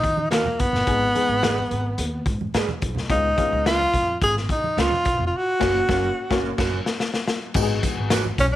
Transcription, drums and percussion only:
0.04 kick, closed hi-hat
0.17 high conga
0.31 snare, closed hi-hat
0.46 high conga, low conga
0.59 kick, closed hi-hat, muted conga
0.72 snare, low conga
0.87 kick, closed hi-hat, muted conga
1.15 closed hi-hat, high conga
1.43 snare, closed hi-hat, muted conga, high conga
1.58 high conga
1.71 closed hi-hat, low conga
1.98 closed hi-hat
2.26 kick, closed hi-hat, muted conga
2.41 high conga
2.54 snare, closed hi-hat
2.69 high conga, low conga
2.82 kick, closed hi-hat, muted conga
2.95 snare, low conga
3.10 kick, closed hi-hat, muted conga
3.37 kick, closed hi-hat, muted conga, high conga
3.66 snare, closed hi-hat, high conga
3.80 high conga
3.94 kick, closed hi-hat, muted conga, low conga
4.22 kick, closed hi-hat, muted conga
4.37 snare
4.49 kick, closed hi-hat, muted conga
4.64 high conga
4.78 snare, closed hi-hat
4.92 high conga, low conga
5.05 kick, closed hi-hat
5.19 low conga
5.61 kick, snare, crash
5.89 kick, snare
6.31 kick, snare
6.58 kick, snare, crash
6.86 snare
7.00 snare
7.14 snare
7.28 snare
7.54 kick, crash, tambourine
7.83 kick, closed hi-hat, tambourine, high conga
8.10 snare, closed hi-hat, tambourine, muted conga, high conga
8.25 high conga
8.38 kick, closed hi-hat, tambourine, muted conga, low conga

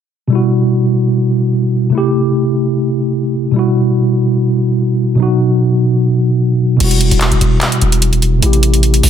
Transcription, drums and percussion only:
6.80 closed hi-hat, crash
6.91 closed hi-hat
7.01 closed hi-hat
7.11 closed hi-hat
7.21 clap, closed hi-hat
7.32 closed hi-hat
7.41 closed hi-hat
7.61 clap, closed hi-hat
7.72 closed hi-hat
7.82 closed hi-hat
7.92 closed hi-hat
8.02 closed hi-hat
8.13 closed hi-hat
8.22 closed hi-hat
8.43 closed hi-hat
8.53 closed hi-hat
8.63 closed hi-hat
8.74 closed hi-hat
8.83 closed hi-hat
8.94 closed hi-hat
9.03 open hi-hat

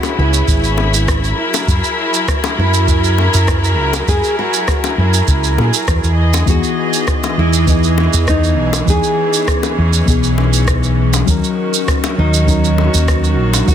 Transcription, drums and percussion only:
0.03 high bongo, shaker
0.34 shaker
0.48 kick, shaker
0.64 shaker
0.78 high bongo
0.94 shaker
1.08 kick, cross-stick, shaker
1.24 shaker
1.54 high bongo, shaker
1.68 kick, shaker
1.84 shaker
2.14 shaker
2.28 kick, cross-stick, shaker
2.44 high bongo, shaker
2.74 shaker
2.88 kick, shaker
3.04 shaker
3.18 high bongo
3.34 shaker
3.48 kick, cross-stick, shaker
3.64 shaker
3.93 high bongo, shaker
4.08 kick, shaker
4.24 shaker
4.54 shaker
4.68 kick, cross-stick, shaker
4.84 high bongo, shaker
5.14 shaker
5.28 kick, shaker
5.44 shaker
5.58 high bongo
5.74 shaker
5.88 kick, cross-stick, shaker
6.04 shaker
6.34 high bongo, shaker
6.47 kick, shaker
6.64 shaker
6.94 shaker
7.08 kick, cross-stick, shaker
7.23 high bongo, shaker
7.53 shaker
7.67 kick, shaker
7.84 shaker
7.98 high bongo
8.13 shaker
8.27 kick, cross-stick, shaker
8.44 shaker
8.73 high bongo, shaker
8.88 kick, shaker
9.04 shaker
9.34 shaker
9.48 kick, cross-stick, shaker
9.63 high bongo, shaker
9.93 shaker
10.08 kick, shaker
10.24 shaker
10.38 high bongo
10.54 shaker
10.68 kick, cross-stick, shaker
10.83 shaker
11.13 high bongo, shaker
11.28 kick, shaker
11.44 shaker
11.74 shaker
11.88 kick, cross-stick, shaker
12.04 high bongo, shaker
12.34 shaker
12.48 kick, shaker
12.64 shaker
12.78 high bongo
12.94 shaker
13.08 kick, cross-stick, shaker
13.24 shaker
13.54 high bongo, shaker
13.68 kick, shaker

